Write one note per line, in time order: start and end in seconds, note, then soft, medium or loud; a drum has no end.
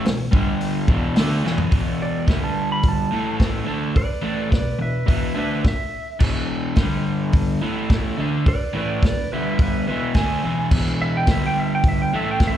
0.04 0.27 E2 medium
0.04 0.27 B2 medium
0.04 snare loud
0.04 open hi-hat medium
0.31 0.87 G2 loud
0.31 0.88 D3 loud
0.31 0.88 G3 loud
0.31 kick loud
0.61 open hi-hat medium
0.88 1.16 E2 medium
0.88 1.16 B2 loud
0.88 1.16 E3 loud
0.88 kick loud
1.16 1.44 D3 medium
1.16 1.44 A3 loud
1.16 1.45 D4 loud
1.16 snare loud
1.16 open hi-hat medium
1.44 1.70 E2 loud
1.44 1.70 B2 loud
1.44 1.71 E3 loud
1.44 snare medium
1.58 floor tom medium
1.71 2.27 E2 loud
1.71 2.27 B2 loud
1.71 2.28 E3 loud
1.71 kick loud
1.71 open hi-hat medium
2.02 2.31 D5 medium
2.27 3.11 G2 medium
2.27 3.11 D3 medium
2.27 3.12 G3 loud
2.27 2.43 E5 medium
2.27 kick loud
2.27 snare loud
2.27 open hi-hat medium
2.44 2.70 A5 medium
2.72 2.85 B5 medium
2.83 kick loud
2.83 open hi-hat medium
2.88 3.41 A5 loud
3.12 3.65 A2 medium
3.12 3.67 E3 loud
3.12 3.66 A3 loud
3.40 kick loud
3.40 snare loud
3.40 open hi-hat medium
3.65 3.94 D3 loud
3.65 3.95 A3 loud
3.65 3.95 D4 loud
3.94 4.23 B4 medium
3.94 4.24 D5 loud
3.94 muted overdriven electric guitar stroke medium
3.94 kick loud
3.94 open hi-hat medium
4.22 4.50 A2 medium
4.22 4.51 E3 medium
4.22 4.51 A3 loud
4.22 4.51 B4 medium
4.22 4.51 D5 medium
4.50 4.74 E2 medium
4.50 4.74 B2 medium
4.50 4.79 B4 medium
4.50 4.80 D5 medium
4.50 kick loud
4.50 snare loud
4.50 open hi-hat medium
4.79 5.02 E2 medium
4.79 5.03 B2 medium
4.79 5.07 B4 medium
4.79 5.07 E5 medium
5.06 5.35 E2 medium
5.06 5.34 B2 medium
5.06 5.35 E3 loud
5.06 5.35 B4 medium
5.06 5.36 E5 medium
5.06 kick loud
5.06 open hi-hat medium
5.34 5.63 D3 medium
5.34 5.63 A3 loud
5.34 5.64 D4 medium
5.34 5.64 B4 medium
5.39 5.65 E5 medium
5.63 muted overdriven electric guitar stroke medium
5.63 kick loud
5.63 snare loud
5.63 open hi-hat medium
5.68 6.21 E5 loud
6.19 6.76 E2 loud
6.19 6.77 B2 loud
6.19 6.77 E3 loud
6.19 kick loud
6.19 crash loud
6.75 7.61 G2 medium
6.75 7.61 D3 loud
6.75 7.62 G3 loud
6.75 kick loud
6.75 snare loud
6.75 open hi-hat medium
7.33 kick loud
7.33 open hi-hat medium
7.62 8.18 A2 loud
7.62 8.18 E3 loud
7.62 8.18 A3 loud
7.90 kick loud
7.90 snare loud
7.90 open hi-hat medium
8.18 8.46 D3 medium
8.18 8.47 A3 medium
8.18 8.47 D4 loud
8.46 8.76 B4 medium
8.46 8.75 D5 loud
8.46 muted overdriven electric guitar stroke medium
8.46 kick loud
8.46 open hi-hat medium
8.73 9.02 A2 medium
8.73 9.02 E3 medium
8.73 9.03 A3 medium
8.73 9.03 B4 medium
8.78 9.04 D5 medium
9.03 9.27 E2 medium
9.03 9.27 B2 medium
9.03 9.31 B4 medium
9.03 kick loud
9.03 snare loud
9.03 open hi-hat medium
9.08 9.33 D5 medium
9.32 9.88 G2 medium
9.32 9.88 D3 medium
9.32 9.88 G3 loud
9.32 9.58 B4 medium
9.32 9.60 E5 medium
9.59 9.87 B4 medium
9.59 kick loud
9.59 open hi-hat medium
9.63 9.87 E5 medium
9.88 10.15 E2 medium
9.88 10.16 B2 medium
9.88 10.16 E3 loud
9.88 10.14 B4 medium
9.88 10.15 E5 medium
10.14 10.43 D3 medium
10.14 10.44 A3 medium
10.14 10.44 D4 loud
10.14 10.70 G#5 loud
10.14 kick loud
10.14 snare loud
10.14 open hi-hat medium
10.43 10.71 E2 medium
10.43 10.71 B2 loud
10.43 10.72 E3 loud
10.71 11.27 E2 loud
10.71 11.28 B2 loud
10.71 11.28 E3 loud
10.71 kick loud
10.71 crash loud
11.02 11.15 E5 loud
11.17 11.30 G5 loud
11.27 12.12 G2 medium
11.27 12.12 D3 loud
11.27 12.13 G3 loud
11.27 kick loud
11.27 snare loud
11.27 open hi-hat medium
11.31 11.44 E5 medium
11.46 11.58 G5 medium
11.60 11.72 E5 medium
11.75 11.87 G5 loud
11.84 kick loud
11.84 open hi-hat medium
11.88 12.01 E5 medium
12.02 12.14 G5 medium
12.13 12.57 A2 medium
12.13 12.57 E3 medium
12.13 12.57 A3 loud
12.13 12.28 E5 medium
12.31 12.43 G5 medium
12.40 kick loud
12.40 snare loud
12.40 open hi-hat medium
12.48 12.57 E5 medium